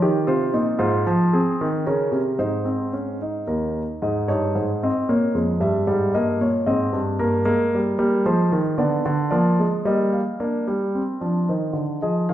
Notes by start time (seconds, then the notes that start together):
0.02 D#3 G4
0.27 C3 F4 C5
0.54 A#2 D#4
0.79 G#2 F4 C5
1.07 F3
1.33 C4 G#4
1.61 D#3
1.86 C#3 C#4 A#4
2.12 C3
2.39 G#2 D#4 C5
2.65 C4
2.93 C#4
3.22 D#4
3.47 D#2 A#4
4.02 G#2 D#4 D#5
4.28 G2 D#4 C#5
4.55 G#2 C5
4.83 C4 D#5
5.09 A#2 A#3 C#5
5.35 F2 G#3
5.60 G2 G3 E5
5.87 G#2 G3
6.14 G2 A#3 D#5
6.41 A#2 C#5
6.66 G#2 C4 D#5
6.93 G2
7.19 G2 A#3 A#4
7.45 G#3 A#3
7.75 G3
7.99 G3 A#3
8.26 F3 G#3 C5
8.52 D#3
8.78 D3 B3 D5
9.06 D3
9.31 F3 A#3 D5
9.59 G#3
9.85 G3 A#3 D#5
10.12 F5
10.40 A#3 D4 D5
10.68 G3
10.95 C4
11.21 F3 D4
11.49 D#3 D#4 C5
11.73 D3
12.02 F3 G#4 D#5
12.29 D#3 F5